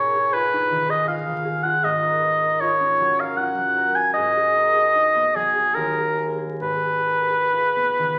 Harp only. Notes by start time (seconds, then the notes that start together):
Already playing: G#2 G#4 A#4
0.16 G#4
0.34 F4
0.53 D#4
0.70 D#3
0.88 G#4
1.07 F4
1.26 D#3
1.44 G#4
1.64 F4
1.83 G#2
2.02 A#4
2.20 B4
2.42 A#4
2.61 F4
2.80 C#4
3.00 F#3
3.20 A#4
3.39 F4
3.57 F#3
3.77 A#4
3.96 F4
4.17 G#2
4.36 G#4
4.56 A#4
4.75 G#4
4.95 D#4
5.15 B3
5.35 F#3
5.55 G#4
5.76 D#2
5.97 G#4
6.18 A#4
6.38 G#4
6.61 G#2
6.84 G#4
7.07 A#4
7.29 G#4
7.53 F4
7.76 B3
7.98 D#3